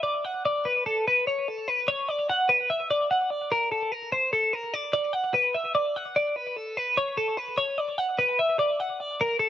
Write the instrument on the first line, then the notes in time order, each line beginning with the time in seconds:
clean electric guitar
0.03 D5
0.25 F#5
0.45 D5
0.65 B4
0.86 A4
1.08 B4
1.27 C#5
1.48 A4
1.68 B4
1.88 C#5
2.09 D5
2.30 F#5
2.49 B4
2.70 E5
2.91 D5
3.11 F#5
3.30 D5
3.52 A#4
3.72 A4
3.92 A#4
4.12 C5
4.33 A4
4.53 A#4
4.74 D5
4.93 D5
5.13 F#5
5.34 B4
5.55 E5
5.75 D5
5.96 F#5
6.16 D5
6.36 B4
6.57 A4
6.77 B4
6.97 C#5
7.17 A4
7.37 B4
7.58 C#5
7.78 D5
7.98 F#5
8.19 B4
8.39 E5
8.59 D5
8.80 F#5
9.00 D5
9.21 A#4
9.39 A4